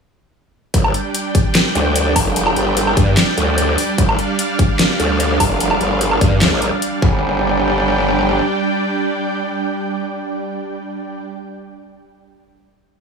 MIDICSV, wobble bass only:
0, 0, Header, 1, 2, 480
1, 0, Start_track
1, 0, Tempo, 405405
1, 876, Time_signature, 4, 2, 24, 8
1, 15396, End_track
2, 0, Start_track
2, 0, Title_t, "Wobble bass"
2, 0, Program_c, 0, 39
2, 877, Note_on_c, 0, 31, 99
2, 1098, Note_off_c, 0, 31, 0
2, 2076, Note_on_c, 0, 38, 96
2, 2538, Note_off_c, 0, 38, 0
2, 2556, Note_on_c, 0, 29, 95
2, 3018, Note_off_c, 0, 29, 0
2, 3037, Note_on_c, 0, 31, 100
2, 3498, Note_off_c, 0, 31, 0
2, 3517, Note_on_c, 0, 43, 96
2, 3738, Note_off_c, 0, 43, 0
2, 3997, Note_on_c, 0, 38, 100
2, 4458, Note_off_c, 0, 38, 0
2, 4716, Note_on_c, 0, 31, 97
2, 4938, Note_off_c, 0, 31, 0
2, 5916, Note_on_c, 0, 38, 98
2, 6378, Note_off_c, 0, 38, 0
2, 6396, Note_on_c, 0, 29, 98
2, 6857, Note_off_c, 0, 29, 0
2, 6876, Note_on_c, 0, 31, 100
2, 7337, Note_off_c, 0, 31, 0
2, 7356, Note_on_c, 0, 43, 98
2, 7578, Note_off_c, 0, 43, 0
2, 7596, Note_on_c, 0, 38, 102
2, 7700, Note_off_c, 0, 38, 0
2, 7721, Note_on_c, 0, 34, 97
2, 7941, Note_off_c, 0, 34, 0
2, 8316, Note_on_c, 0, 31, 96
2, 9949, Note_off_c, 0, 31, 0
2, 15396, End_track
0, 0, End_of_file